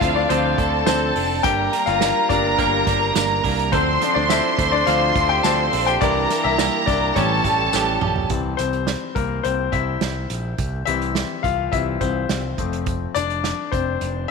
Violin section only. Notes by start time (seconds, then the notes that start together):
Already playing: F4 F5
0.59 A4 A5
1.45 A#4 A#5
3.73 C5 C6
6.02 A#4 A#5
7.16 A4 A5